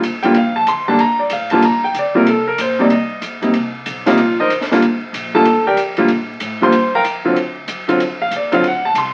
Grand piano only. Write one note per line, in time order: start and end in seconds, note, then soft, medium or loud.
0.23 0.34 D3 medium
0.23 0.34 G3 medium
0.23 0.34 A#3 medium
0.23 0.34 F4 medium
0.23 0.34 G5 medium
0.38 0.56 F5 medium
0.56 0.67 A5 medium
0.68 0.87 C6 medium
0.88 0.98 D3 medium
0.88 0.98 G3 medium
0.88 0.98 A#3 medium
0.88 0.98 D4 medium
0.88 0.99 A5 medium
1.00 1.19 A#5 medium
1.19 1.30 D5 medium
1.33 1.51 F5 medium
1.51 1.62 D3 medium
1.51 1.62 G3 medium
1.51 1.62 A#3 medium
1.51 1.62 F4 medium
1.51 1.62 A5 medium
1.65 1.83 A#5 medium
1.84 1.95 G5 medium
1.99 2.16 D5 medium
2.15 2.25 C3 medium
2.15 2.25 G3 medium
2.15 2.25 A#3 medium
2.15 2.25 F4 medium
2.15 2.27 A#4 medium
2.28 2.47 A4 medium
2.47 2.58 A#4 medium
2.61 2.79 C5 medium
2.79 2.89 C3 medium
2.79 2.89 G3 medium
2.79 2.89 A#3 medium
2.79 2.90 D#4 medium
2.79 2.91 D5 medium
2.92 3.21 D#5 medium
3.42 3.52 C3 medium
3.42 3.53 G3 soft
3.42 3.53 A#3 soft
3.42 3.53 D#4 medium
4.06 4.17 C3 medium
4.06 4.17 G3 medium
4.06 4.17 A#3 medium
4.06 4.17 D#4 medium
4.06 4.36 F4 medium
4.06 4.36 F5 medium
4.40 4.50 D#4 medium
4.40 4.50 A#4 medium
4.40 4.50 C5 medium
4.40 4.50 D#5 medium
4.71 4.81 D3 medium
4.71 4.81 G3 medium
4.71 4.81 A#3 medium
4.71 4.82 F4 medium
5.34 5.44 D3 medium
5.34 5.44 G3 medium
5.34 5.44 A#3 medium
5.34 5.45 F4 medium
5.34 5.64 A4 medium
5.34 5.64 A5 loud
5.67 5.77 G4 medium
5.67 5.77 A#4 medium
5.67 5.77 D5 medium
5.67 5.77 G5 medium
5.98 6.08 D3 medium
5.98 6.08 G3 medium
5.98 6.08 A#3 medium
5.98 6.08 F4 medium
6.61 6.72 D3 medium
6.61 6.72 G3 medium
6.61 6.72 A#3 medium
6.61 6.72 F4 medium
6.61 6.92 C5 medium
6.61 6.92 C6 medium
6.95 7.01 A#4 medium
6.95 7.01 F5 medium
6.95 7.02 G5 medium
6.95 7.01 A#5 medium
7.24 7.35 D3 medium
7.24 7.36 F#3 medium
7.24 7.36 C4 medium
7.24 7.36 F4 medium
7.88 7.99 D3 medium
7.88 7.99 F#3 medium
7.88 7.99 C4 medium
7.88 7.99 F4 medium
8.22 8.32 F5 medium
8.36 8.54 D5 soft
8.52 8.62 D3 medium
8.52 8.62 F#3 medium
8.52 8.63 C4 medium
8.52 8.63 F4 medium
8.52 8.64 F5 medium
8.68 8.86 F#5 medium
8.85 8.96 A5 medium
8.98 9.13 C6 medium